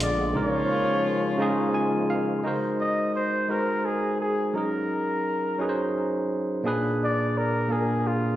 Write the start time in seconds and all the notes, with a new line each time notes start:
Already playing: A#1 A#2 D3 F3 G#3 B3 D4 F4 G#4 B4 D5
0.00 D5, closed hi-hat
0.33 C#3 F3 G#3 A#3 C#4 D#4 F4
0.37 A#4 C#5
1.38 C#3 G#3 D#4 F4 G#4
1.74 G#5
2.10 F5
2.43 G#3 D#4 F#4 A#4
2.48 C5
2.81 D#5
3.16 C5
3.48 G#3 D#4 F#4 A#4
3.52 B4
3.59 C5
3.85 G#4
4.20 G#4
4.53 F#3 C#4 D#4 G#4 A#4
4.58 A#4
5.58 F#3 C#4 D#4 G#4
5.62 B4
5.69 C5
6.63 A#2 A#3 D4 G#4
6.67 B4
7.04 D5
7.38 A#4
7.68 A#2 A#3 D4 G#4
7.72 A#4
8.07 F4